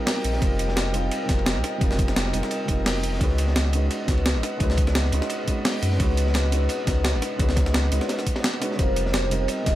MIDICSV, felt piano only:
0, 0, Header, 1, 2, 480
1, 0, Start_track
1, 0, Tempo, 348837
1, 577, Time_signature, 4, 2, 24, 8
1, 13420, End_track
2, 0, Start_track
2, 0, Title_t, "Felt piano"
2, 0, Program_c, 0, 0
2, 0, Control_c, 0, 64, 127
2, 0, Note_on_c, 0, 55, 83
2, 0, Note_on_c, 0, 60, 76
2, 0, Note_on_c, 0, 63, 76
2, 0, Note_on_c, 0, 65, 77
2, 0, Note_on_c, 0, 70, 91
2, 511, Note_off_c, 0, 55, 0
2, 531, Note_on_c, 0, 55, 101
2, 535, Note_off_c, 0, 60, 0
2, 549, Note_off_c, 0, 63, 0
2, 555, Note_on_c, 0, 60, 90
2, 561, Note_off_c, 0, 65, 0
2, 572, Note_off_c, 0, 70, 0
2, 578, Note_on_c, 0, 63, 88
2, 600, Note_on_c, 0, 65, 92
2, 623, Note_on_c, 0, 70, 109
2, 1247, Note_off_c, 0, 55, 0
2, 1259, Note_off_c, 0, 60, 0
2, 1270, Note_off_c, 0, 63, 0
2, 1273, Note_on_c, 0, 55, 85
2, 1281, Note_off_c, 0, 65, 0
2, 1283, Note_on_c, 0, 60, 78
2, 1293, Note_off_c, 0, 70, 0
2, 1294, Note_on_c, 0, 63, 80
2, 1306, Note_on_c, 0, 65, 81
2, 1317, Note_on_c, 0, 70, 94
2, 1710, Note_off_c, 0, 55, 0
2, 1731, Note_on_c, 0, 55, 83
2, 1734, Note_off_c, 0, 60, 0
2, 1749, Note_off_c, 0, 63, 0
2, 1754, Note_off_c, 0, 65, 0
2, 1754, Note_on_c, 0, 60, 78
2, 1760, Note_off_c, 0, 70, 0
2, 1777, Note_on_c, 0, 63, 77
2, 1798, Note_on_c, 0, 65, 75
2, 1820, Note_on_c, 0, 70, 93
2, 2433, Note_off_c, 0, 55, 0
2, 2453, Note_on_c, 0, 55, 97
2, 2454, Note_off_c, 0, 60, 0
2, 2470, Note_off_c, 0, 63, 0
2, 2475, Note_on_c, 0, 60, 92
2, 2481, Note_off_c, 0, 65, 0
2, 2492, Note_off_c, 0, 70, 0
2, 2497, Note_on_c, 0, 63, 91
2, 2520, Note_on_c, 0, 65, 89
2, 2543, Note_on_c, 0, 70, 109
2, 3168, Note_off_c, 0, 55, 0
2, 3179, Note_off_c, 0, 60, 0
2, 3190, Note_off_c, 0, 63, 0
2, 3192, Note_on_c, 0, 55, 85
2, 3202, Note_off_c, 0, 65, 0
2, 3205, Note_on_c, 0, 60, 78
2, 3213, Note_off_c, 0, 70, 0
2, 3214, Note_on_c, 0, 63, 80
2, 3227, Note_on_c, 0, 65, 78
2, 3238, Note_on_c, 0, 70, 93
2, 3635, Note_off_c, 0, 55, 0
2, 3656, Note_on_c, 0, 55, 81
2, 3657, Note_off_c, 0, 60, 0
2, 3669, Note_off_c, 0, 63, 0
2, 3675, Note_off_c, 0, 65, 0
2, 3678, Note_on_c, 0, 60, 76
2, 3680, Note_off_c, 0, 70, 0
2, 3700, Note_on_c, 0, 63, 76
2, 3724, Note_on_c, 0, 65, 75
2, 3746, Note_on_c, 0, 70, 90
2, 4369, Note_off_c, 0, 55, 0
2, 4371, Note_on_c, 0, 56, 98
2, 4380, Note_off_c, 0, 60, 0
2, 4392, Note_off_c, 0, 63, 0
2, 4394, Note_on_c, 0, 61, 88
2, 4404, Note_off_c, 0, 65, 0
2, 4414, Note_off_c, 0, 70, 0
2, 4414, Note_on_c, 0, 63, 89
2, 4436, Control_c, 0, 64, 0
2, 4438, Note_on_c, 0, 66, 91
2, 4459, Note_on_c, 0, 71, 111
2, 4683, Control_c, 0, 64, 127
2, 5087, Note_off_c, 0, 56, 0
2, 5098, Note_off_c, 0, 61, 0
2, 5109, Note_off_c, 0, 63, 0
2, 5118, Note_on_c, 0, 56, 85
2, 5121, Note_off_c, 0, 66, 0
2, 5131, Note_off_c, 0, 71, 0
2, 5131, Note_on_c, 0, 61, 78
2, 5140, Note_on_c, 0, 63, 78
2, 5153, Note_on_c, 0, 66, 75
2, 5164, Note_on_c, 0, 71, 92
2, 5549, Note_off_c, 0, 56, 0
2, 5570, Note_on_c, 0, 56, 83
2, 5573, Note_off_c, 0, 61, 0
2, 5592, Note_off_c, 0, 63, 0
2, 5594, Note_on_c, 0, 61, 74
2, 5598, Note_off_c, 0, 66, 0
2, 5603, Note_off_c, 0, 71, 0
2, 5616, Note_on_c, 0, 63, 76
2, 5638, Note_on_c, 0, 66, 74
2, 5658, Note_on_c, 0, 71, 90
2, 6269, Note_off_c, 0, 56, 0
2, 6290, Note_on_c, 0, 56, 98
2, 6291, Note_off_c, 0, 61, 0
2, 6310, Note_off_c, 0, 63, 0
2, 6312, Note_on_c, 0, 61, 91
2, 6321, Note_off_c, 0, 66, 0
2, 6331, Note_off_c, 0, 71, 0
2, 6335, Note_on_c, 0, 63, 91
2, 6359, Note_on_c, 0, 66, 89
2, 6379, Note_on_c, 0, 71, 110
2, 7007, Note_off_c, 0, 56, 0
2, 7017, Note_off_c, 0, 61, 0
2, 7029, Note_off_c, 0, 63, 0
2, 7033, Note_on_c, 0, 56, 87
2, 7041, Note_off_c, 0, 66, 0
2, 7046, Note_on_c, 0, 61, 76
2, 7051, Note_off_c, 0, 71, 0
2, 7055, Note_on_c, 0, 63, 78
2, 7067, Note_on_c, 0, 66, 80
2, 7079, Note_on_c, 0, 71, 93
2, 7471, Note_off_c, 0, 56, 0
2, 7492, Note_off_c, 0, 61, 0
2, 7492, Note_on_c, 0, 56, 83
2, 7509, Note_off_c, 0, 63, 0
2, 7513, Note_on_c, 0, 61, 77
2, 7515, Note_off_c, 0, 66, 0
2, 7521, Note_off_c, 0, 71, 0
2, 7537, Note_on_c, 0, 63, 75
2, 7560, Note_on_c, 0, 66, 78
2, 7581, Note_on_c, 0, 71, 90
2, 8189, Note_off_c, 0, 56, 0
2, 8209, Note_on_c, 0, 56, 98
2, 8211, Note_off_c, 0, 61, 0
2, 8230, Note_off_c, 0, 63, 0
2, 8232, Note_on_c, 0, 61, 91
2, 8241, Note_off_c, 0, 66, 0
2, 8252, Note_off_c, 0, 71, 0
2, 8252, Note_on_c, 0, 63, 91
2, 8276, Note_on_c, 0, 66, 90
2, 8299, Note_on_c, 0, 71, 108
2, 8926, Note_off_c, 0, 56, 0
2, 8937, Note_off_c, 0, 61, 0
2, 8947, Note_off_c, 0, 63, 0
2, 8954, Note_on_c, 0, 56, 83
2, 8960, Note_off_c, 0, 66, 0
2, 8965, Note_on_c, 0, 61, 79
2, 8971, Note_off_c, 0, 71, 0
2, 8977, Note_on_c, 0, 63, 78
2, 8986, Note_on_c, 0, 66, 81
2, 8998, Note_on_c, 0, 71, 94
2, 9392, Note_off_c, 0, 56, 0
2, 9413, Note_on_c, 0, 56, 81
2, 9415, Note_off_c, 0, 61, 0
2, 9430, Note_off_c, 0, 63, 0
2, 9435, Note_off_c, 0, 66, 0
2, 9435, Note_on_c, 0, 61, 76
2, 9441, Note_off_c, 0, 71, 0
2, 9458, Note_on_c, 0, 63, 78
2, 9478, Note_on_c, 0, 66, 77
2, 9503, Note_on_c, 0, 71, 92
2, 10110, Note_off_c, 0, 56, 0
2, 10131, Note_on_c, 0, 56, 101
2, 10133, Note_off_c, 0, 61, 0
2, 10151, Note_off_c, 0, 63, 0
2, 10154, Note_on_c, 0, 61, 91
2, 10161, Note_off_c, 0, 66, 0
2, 10173, Note_off_c, 0, 71, 0
2, 10176, Note_on_c, 0, 63, 90
2, 10198, Note_on_c, 0, 66, 90
2, 10221, Note_on_c, 0, 71, 111
2, 10847, Note_off_c, 0, 56, 0
2, 10858, Note_off_c, 0, 61, 0
2, 10870, Note_off_c, 0, 63, 0
2, 10877, Note_on_c, 0, 56, 84
2, 10880, Note_off_c, 0, 66, 0
2, 10886, Note_on_c, 0, 61, 78
2, 10892, Note_off_c, 0, 71, 0
2, 10897, Note_on_c, 0, 63, 80
2, 10909, Note_on_c, 0, 66, 77
2, 10919, Note_on_c, 0, 71, 96
2, 11340, Note_off_c, 0, 56, 0
2, 11345, Note_off_c, 0, 61, 0
2, 11350, Note_off_c, 0, 63, 0
2, 11356, Note_off_c, 0, 66, 0
2, 11361, Note_off_c, 0, 71, 0
2, 11834, Note_on_c, 0, 56, 88
2, 11844, Note_on_c, 0, 61, 84
2, 11855, Note_on_c, 0, 63, 82
2, 11867, Note_on_c, 0, 66, 83
2, 11878, Note_on_c, 0, 71, 100
2, 12053, Note_on_c, 0, 55, 98
2, 12058, Note_off_c, 0, 56, 0
2, 12064, Note_off_c, 0, 61, 0
2, 12069, Note_off_c, 0, 63, 0
2, 12073, Note_on_c, 0, 60, 90
2, 12075, Note_off_c, 0, 66, 0
2, 12081, Note_off_c, 0, 71, 0
2, 12097, Note_on_c, 0, 63, 91
2, 12117, Control_c, 0, 64, 0
2, 12118, Note_on_c, 0, 65, 89
2, 12142, Note_on_c, 0, 70, 107
2, 12336, Control_c, 0, 64, 127
2, 12768, Note_off_c, 0, 55, 0
2, 12778, Note_off_c, 0, 60, 0
2, 12790, Note_off_c, 0, 63, 0
2, 12796, Note_on_c, 0, 55, 85
2, 12800, Note_off_c, 0, 65, 0
2, 12807, Note_on_c, 0, 60, 79
2, 12813, Note_off_c, 0, 70, 0
2, 12818, Note_on_c, 0, 63, 78
2, 12829, Note_on_c, 0, 65, 77
2, 12841, Note_on_c, 0, 70, 94
2, 13231, Note_off_c, 0, 55, 0
2, 13251, Note_on_c, 0, 55, 83
2, 13254, Note_off_c, 0, 60, 0
2, 13271, Note_off_c, 0, 63, 0
2, 13274, Note_on_c, 0, 60, 78
2, 13276, Note_off_c, 0, 65, 0
2, 13282, Note_off_c, 0, 70, 0
2, 13297, Note_on_c, 0, 63, 77
2, 13318, Note_on_c, 0, 65, 76
2, 13339, Note_on_c, 0, 70, 93
2, 13420, Note_off_c, 0, 55, 0
2, 13420, Note_off_c, 0, 60, 0
2, 13420, Note_off_c, 0, 63, 0
2, 13420, Note_off_c, 0, 65, 0
2, 13420, Note_off_c, 0, 70, 0
2, 13420, End_track
0, 0, End_of_file